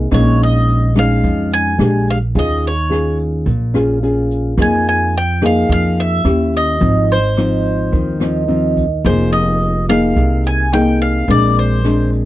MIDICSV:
0, 0, Header, 1, 5, 480
1, 0, Start_track
1, 0, Tempo, 558140
1, 106, Time_signature, 4, 2, 24, 8
1, 10536, End_track
2, 0, Start_track
2, 0, Title_t, "Mandolin"
2, 0, Program_c, 0, 25
2, 122, Note_on_c, 0, 73, 73
2, 360, Note_off_c, 0, 73, 0
2, 372, Note_on_c, 0, 75, 81
2, 805, Note_off_c, 0, 75, 0
2, 850, Note_on_c, 0, 77, 98
2, 1317, Note_off_c, 0, 77, 0
2, 1321, Note_on_c, 0, 80, 91
2, 1806, Note_off_c, 0, 80, 0
2, 1810, Note_on_c, 0, 77, 90
2, 1871, Note_off_c, 0, 77, 0
2, 2053, Note_on_c, 0, 75, 80
2, 2285, Note_off_c, 0, 75, 0
2, 2298, Note_on_c, 0, 73, 71
2, 2728, Note_off_c, 0, 73, 0
2, 3972, Note_on_c, 0, 80, 91
2, 4182, Note_off_c, 0, 80, 0
2, 4203, Note_on_c, 0, 80, 87
2, 4440, Note_off_c, 0, 80, 0
2, 4451, Note_on_c, 0, 79, 96
2, 4684, Note_off_c, 0, 79, 0
2, 4693, Note_on_c, 0, 77, 93
2, 4902, Note_off_c, 0, 77, 0
2, 4921, Note_on_c, 0, 77, 94
2, 5159, Note_off_c, 0, 77, 0
2, 5160, Note_on_c, 0, 76, 92
2, 5644, Note_off_c, 0, 76, 0
2, 5647, Note_on_c, 0, 75, 89
2, 6119, Note_off_c, 0, 75, 0
2, 6122, Note_on_c, 0, 72, 74
2, 7518, Note_off_c, 0, 72, 0
2, 7790, Note_on_c, 0, 72, 78
2, 8016, Note_off_c, 0, 72, 0
2, 8020, Note_on_c, 0, 75, 87
2, 8468, Note_off_c, 0, 75, 0
2, 8510, Note_on_c, 0, 77, 100
2, 8999, Note_off_c, 0, 77, 0
2, 9003, Note_on_c, 0, 80, 89
2, 9217, Note_off_c, 0, 80, 0
2, 9232, Note_on_c, 0, 79, 101
2, 9471, Note_off_c, 0, 79, 0
2, 9475, Note_on_c, 0, 77, 87
2, 9716, Note_off_c, 0, 77, 0
2, 9723, Note_on_c, 0, 74, 82
2, 9960, Note_off_c, 0, 74, 0
2, 9966, Note_on_c, 0, 72, 70
2, 10402, Note_off_c, 0, 72, 0
2, 10536, End_track
3, 0, Start_track
3, 0, Title_t, "Nylon-string guitar"
3, 0, Program_c, 1, 24
3, 96, Note_on_c, 1, 46, 50
3, 98, Note_on_c, 1, 56, 55
3, 101, Note_on_c, 1, 61, 54
3, 102, Note_on_c, 1, 63, 56
3, 782, Note_off_c, 1, 56, 0
3, 783, Note_off_c, 1, 61, 0
3, 784, Note_off_c, 1, 63, 0
3, 820, Note_on_c, 1, 56, 61
3, 825, Note_on_c, 1, 61, 62
3, 829, Note_on_c, 1, 63, 63
3, 1036, Note_off_c, 1, 46, 0
3, 1061, Note_on_c, 1, 53, 50
3, 1503, Note_off_c, 1, 56, 0
3, 1505, Note_off_c, 1, 61, 0
3, 1508, Note_off_c, 1, 63, 0
3, 1518, Note_off_c, 1, 53, 0
3, 1533, Note_on_c, 1, 56, 59
3, 1539, Note_on_c, 1, 62, 59
3, 1542, Note_on_c, 1, 67, 61
3, 1861, Note_off_c, 1, 56, 0
3, 1863, Note_off_c, 1, 62, 0
3, 1865, Note_off_c, 1, 67, 0
3, 2020, Note_on_c, 1, 51, 53
3, 2022, Note_on_c, 1, 61, 47
3, 2024, Note_on_c, 1, 65, 50
3, 2028, Note_on_c, 1, 68, 51
3, 2331, Note_off_c, 1, 61, 0
3, 2333, Note_off_c, 1, 65, 0
3, 2335, Note_off_c, 1, 68, 0
3, 2492, Note_on_c, 1, 61, 55
3, 2493, Note_on_c, 1, 65, 49
3, 2498, Note_on_c, 1, 68, 53
3, 2958, Note_off_c, 1, 51, 0
3, 2974, Note_off_c, 1, 65, 0
3, 2975, Note_off_c, 1, 61, 0
3, 2978, Note_off_c, 1, 68, 0
3, 2978, Note_on_c, 1, 46, 47
3, 3215, Note_on_c, 1, 61, 65
3, 3218, Note_on_c, 1, 65, 60
3, 3225, Note_on_c, 1, 68, 68
3, 3421, Note_off_c, 1, 61, 0
3, 3423, Note_off_c, 1, 65, 0
3, 3424, Note_off_c, 1, 68, 0
3, 3464, Note_on_c, 1, 61, 56
3, 3467, Note_on_c, 1, 65, 55
3, 3470, Note_on_c, 1, 68, 61
3, 3905, Note_off_c, 1, 61, 0
3, 3906, Note_off_c, 1, 65, 0
3, 3908, Note_off_c, 1, 68, 0
3, 3916, Note_off_c, 1, 46, 0
3, 3942, Note_on_c, 1, 58, 50
3, 3943, Note_on_c, 1, 53, 52
3, 3946, Note_on_c, 1, 63, 50
3, 3951, Note_on_c, 1, 68, 55
3, 4419, Note_off_c, 1, 58, 0
3, 4422, Note_off_c, 1, 63, 0
3, 4423, Note_off_c, 1, 68, 0
3, 4658, Note_on_c, 1, 58, 59
3, 4664, Note_on_c, 1, 63, 63
3, 4664, Note_on_c, 1, 68, 65
3, 4879, Note_off_c, 1, 53, 0
3, 4892, Note_on_c, 1, 53, 53
3, 5342, Note_off_c, 1, 58, 0
3, 5345, Note_off_c, 1, 63, 0
3, 5345, Note_off_c, 1, 68, 0
3, 5353, Note_off_c, 1, 53, 0
3, 5374, Note_on_c, 1, 61, 63
3, 5380, Note_on_c, 1, 64, 62
3, 5383, Note_on_c, 1, 67, 65
3, 5839, Note_off_c, 1, 61, 0
3, 5842, Note_off_c, 1, 64, 0
3, 5844, Note_off_c, 1, 67, 0
3, 5846, Note_on_c, 1, 44, 50
3, 5853, Note_on_c, 1, 53, 53
3, 5854, Note_on_c, 1, 60, 58
3, 5860, Note_on_c, 1, 63, 55
3, 6166, Note_off_c, 1, 53, 0
3, 6168, Note_off_c, 1, 60, 0
3, 6169, Note_off_c, 1, 63, 0
3, 6341, Note_on_c, 1, 53, 58
3, 6347, Note_on_c, 1, 60, 53
3, 6347, Note_on_c, 1, 63, 55
3, 6791, Note_off_c, 1, 44, 0
3, 6811, Note_on_c, 1, 51, 51
3, 7024, Note_off_c, 1, 53, 0
3, 7025, Note_off_c, 1, 60, 0
3, 7027, Note_off_c, 1, 63, 0
3, 7050, Note_on_c, 1, 53, 59
3, 7057, Note_on_c, 1, 60, 65
3, 7060, Note_on_c, 1, 63, 66
3, 7258, Note_off_c, 1, 53, 0
3, 7260, Note_off_c, 1, 60, 0
3, 7263, Note_off_c, 1, 63, 0
3, 7291, Note_on_c, 1, 53, 59
3, 7296, Note_on_c, 1, 60, 56
3, 7301, Note_on_c, 1, 63, 65
3, 7606, Note_off_c, 1, 53, 0
3, 7609, Note_off_c, 1, 60, 0
3, 7611, Note_off_c, 1, 63, 0
3, 7753, Note_off_c, 1, 51, 0
3, 7778, Note_on_c, 1, 53, 51
3, 7782, Note_on_c, 1, 58, 50
3, 7785, Note_on_c, 1, 63, 48
3, 7789, Note_on_c, 1, 68, 52
3, 8464, Note_off_c, 1, 58, 0
3, 8466, Note_off_c, 1, 63, 0
3, 8467, Note_off_c, 1, 68, 0
3, 8501, Note_on_c, 1, 58, 62
3, 8506, Note_on_c, 1, 68, 65
3, 8510, Note_on_c, 1, 63, 64
3, 8717, Note_off_c, 1, 53, 0
3, 8744, Note_on_c, 1, 48, 51
3, 9184, Note_off_c, 1, 58, 0
3, 9187, Note_off_c, 1, 68, 0
3, 9188, Note_off_c, 1, 63, 0
3, 9228, Note_on_c, 1, 58, 59
3, 9232, Note_on_c, 1, 63, 59
3, 9235, Note_on_c, 1, 68, 60
3, 9680, Note_off_c, 1, 48, 0
3, 9687, Note_off_c, 1, 58, 0
3, 9688, Note_off_c, 1, 63, 0
3, 9688, Note_off_c, 1, 68, 0
3, 9702, Note_on_c, 1, 46, 51
3, 9702, Note_on_c, 1, 56, 54
3, 9708, Note_on_c, 1, 62, 59
3, 9710, Note_on_c, 1, 60, 50
3, 10144, Note_off_c, 1, 56, 0
3, 10146, Note_off_c, 1, 60, 0
3, 10147, Note_off_c, 1, 62, 0
3, 10184, Note_on_c, 1, 56, 49
3, 10187, Note_on_c, 1, 60, 51
3, 10190, Note_on_c, 1, 62, 55
3, 10536, Note_off_c, 1, 46, 0
3, 10536, Note_off_c, 1, 56, 0
3, 10536, Note_off_c, 1, 60, 0
3, 10536, Note_off_c, 1, 62, 0
3, 10536, End_track
4, 0, Start_track
4, 0, Title_t, "Upright bass"
4, 0, Program_c, 2, 32
4, 100, Note_on_c, 2, 34, 102
4, 1027, Note_off_c, 2, 34, 0
4, 1062, Note_on_c, 2, 41, 88
4, 1509, Note_off_c, 2, 41, 0
4, 1538, Note_on_c, 2, 34, 97
4, 1987, Note_off_c, 2, 34, 0
4, 2023, Note_on_c, 2, 39, 98
4, 2948, Note_off_c, 2, 39, 0
4, 2975, Note_on_c, 2, 34, 95
4, 3904, Note_off_c, 2, 34, 0
4, 3934, Note_on_c, 2, 41, 105
4, 4864, Note_off_c, 2, 41, 0
4, 4896, Note_on_c, 2, 41, 90
4, 5346, Note_off_c, 2, 41, 0
4, 5372, Note_on_c, 2, 39, 99
4, 5823, Note_off_c, 2, 39, 0
4, 5855, Note_on_c, 2, 32, 102
4, 6785, Note_off_c, 2, 32, 0
4, 6816, Note_on_c, 2, 39, 85
4, 7745, Note_off_c, 2, 39, 0
4, 7780, Note_on_c, 2, 29, 108
4, 8707, Note_off_c, 2, 29, 0
4, 8740, Note_on_c, 2, 36, 90
4, 9668, Note_off_c, 2, 36, 0
4, 9700, Note_on_c, 2, 34, 96
4, 10536, Note_off_c, 2, 34, 0
4, 10536, End_track
5, 0, Start_track
5, 0, Title_t, "Drums"
5, 97, Note_on_c, 9, 37, 61
5, 97, Note_on_c, 9, 42, 56
5, 102, Note_on_c, 9, 36, 58
5, 183, Note_off_c, 9, 37, 0
5, 183, Note_off_c, 9, 42, 0
5, 188, Note_off_c, 9, 36, 0
5, 340, Note_on_c, 9, 42, 43
5, 426, Note_off_c, 9, 42, 0
5, 581, Note_on_c, 9, 42, 41
5, 667, Note_off_c, 9, 42, 0
5, 822, Note_on_c, 9, 37, 55
5, 822, Note_on_c, 9, 42, 45
5, 908, Note_off_c, 9, 37, 0
5, 908, Note_off_c, 9, 42, 0
5, 1065, Note_on_c, 9, 36, 58
5, 1065, Note_on_c, 9, 42, 60
5, 1151, Note_off_c, 9, 36, 0
5, 1151, Note_off_c, 9, 42, 0
5, 1300, Note_on_c, 9, 42, 45
5, 1386, Note_off_c, 9, 42, 0
5, 1545, Note_on_c, 9, 37, 62
5, 1545, Note_on_c, 9, 42, 44
5, 1631, Note_off_c, 9, 37, 0
5, 1631, Note_off_c, 9, 42, 0
5, 1784, Note_on_c, 9, 42, 43
5, 1870, Note_off_c, 9, 42, 0
5, 2023, Note_on_c, 9, 36, 61
5, 2028, Note_on_c, 9, 42, 55
5, 2109, Note_off_c, 9, 36, 0
5, 2114, Note_off_c, 9, 42, 0
5, 2268, Note_on_c, 9, 42, 40
5, 2354, Note_off_c, 9, 42, 0
5, 2509, Note_on_c, 9, 37, 56
5, 2509, Note_on_c, 9, 42, 39
5, 2595, Note_off_c, 9, 37, 0
5, 2595, Note_off_c, 9, 42, 0
5, 2744, Note_on_c, 9, 42, 40
5, 2830, Note_off_c, 9, 42, 0
5, 2979, Note_on_c, 9, 36, 59
5, 2982, Note_on_c, 9, 42, 54
5, 3065, Note_off_c, 9, 36, 0
5, 3068, Note_off_c, 9, 42, 0
5, 3221, Note_on_c, 9, 37, 61
5, 3221, Note_on_c, 9, 42, 43
5, 3307, Note_off_c, 9, 37, 0
5, 3307, Note_off_c, 9, 42, 0
5, 3465, Note_on_c, 9, 42, 47
5, 3551, Note_off_c, 9, 42, 0
5, 3704, Note_on_c, 9, 42, 45
5, 3790, Note_off_c, 9, 42, 0
5, 3936, Note_on_c, 9, 37, 57
5, 3936, Note_on_c, 9, 42, 57
5, 3937, Note_on_c, 9, 36, 59
5, 4022, Note_off_c, 9, 37, 0
5, 4022, Note_off_c, 9, 42, 0
5, 4023, Note_off_c, 9, 36, 0
5, 4180, Note_on_c, 9, 42, 46
5, 4266, Note_off_c, 9, 42, 0
5, 4418, Note_on_c, 9, 42, 37
5, 4504, Note_off_c, 9, 42, 0
5, 4658, Note_on_c, 9, 37, 57
5, 4658, Note_on_c, 9, 42, 45
5, 4744, Note_off_c, 9, 37, 0
5, 4744, Note_off_c, 9, 42, 0
5, 4896, Note_on_c, 9, 36, 56
5, 4898, Note_on_c, 9, 42, 60
5, 4982, Note_off_c, 9, 36, 0
5, 4984, Note_off_c, 9, 42, 0
5, 5136, Note_on_c, 9, 42, 49
5, 5222, Note_off_c, 9, 42, 0
5, 5374, Note_on_c, 9, 37, 59
5, 5374, Note_on_c, 9, 42, 43
5, 5460, Note_off_c, 9, 37, 0
5, 5460, Note_off_c, 9, 42, 0
5, 5617, Note_on_c, 9, 42, 44
5, 5703, Note_off_c, 9, 42, 0
5, 5855, Note_on_c, 9, 42, 59
5, 5857, Note_on_c, 9, 36, 62
5, 5941, Note_off_c, 9, 42, 0
5, 5943, Note_off_c, 9, 36, 0
5, 6100, Note_on_c, 9, 42, 45
5, 6186, Note_off_c, 9, 42, 0
5, 6338, Note_on_c, 9, 37, 52
5, 6338, Note_on_c, 9, 42, 39
5, 6424, Note_off_c, 9, 37, 0
5, 6424, Note_off_c, 9, 42, 0
5, 6578, Note_on_c, 9, 42, 41
5, 6664, Note_off_c, 9, 42, 0
5, 6820, Note_on_c, 9, 36, 62
5, 6820, Note_on_c, 9, 42, 55
5, 6906, Note_off_c, 9, 36, 0
5, 6906, Note_off_c, 9, 42, 0
5, 7058, Note_on_c, 9, 37, 64
5, 7058, Note_on_c, 9, 42, 41
5, 7144, Note_off_c, 9, 37, 0
5, 7144, Note_off_c, 9, 42, 0
5, 7304, Note_on_c, 9, 42, 45
5, 7390, Note_off_c, 9, 42, 0
5, 7541, Note_on_c, 9, 36, 51
5, 7542, Note_on_c, 9, 42, 44
5, 7627, Note_off_c, 9, 36, 0
5, 7628, Note_off_c, 9, 42, 0
5, 7780, Note_on_c, 9, 36, 57
5, 7784, Note_on_c, 9, 37, 56
5, 7784, Note_on_c, 9, 42, 56
5, 7866, Note_off_c, 9, 36, 0
5, 7870, Note_off_c, 9, 37, 0
5, 7870, Note_off_c, 9, 42, 0
5, 8025, Note_on_c, 9, 42, 44
5, 8111, Note_off_c, 9, 42, 0
5, 8267, Note_on_c, 9, 42, 37
5, 8353, Note_off_c, 9, 42, 0
5, 8504, Note_on_c, 9, 37, 60
5, 8504, Note_on_c, 9, 42, 45
5, 8590, Note_off_c, 9, 37, 0
5, 8590, Note_off_c, 9, 42, 0
5, 8740, Note_on_c, 9, 36, 64
5, 8741, Note_on_c, 9, 42, 58
5, 8826, Note_off_c, 9, 36, 0
5, 8827, Note_off_c, 9, 42, 0
5, 8975, Note_on_c, 9, 42, 49
5, 9061, Note_off_c, 9, 42, 0
5, 9221, Note_on_c, 9, 37, 61
5, 9221, Note_on_c, 9, 42, 48
5, 9307, Note_off_c, 9, 37, 0
5, 9307, Note_off_c, 9, 42, 0
5, 9457, Note_on_c, 9, 42, 43
5, 9543, Note_off_c, 9, 42, 0
5, 9700, Note_on_c, 9, 42, 58
5, 9702, Note_on_c, 9, 36, 59
5, 9786, Note_off_c, 9, 42, 0
5, 9788, Note_off_c, 9, 36, 0
5, 9941, Note_on_c, 9, 42, 44
5, 10027, Note_off_c, 9, 42, 0
5, 10184, Note_on_c, 9, 37, 60
5, 10184, Note_on_c, 9, 42, 41
5, 10270, Note_off_c, 9, 37, 0
5, 10270, Note_off_c, 9, 42, 0
5, 10427, Note_on_c, 9, 42, 43
5, 10513, Note_off_c, 9, 42, 0
5, 10536, End_track
0, 0, End_of_file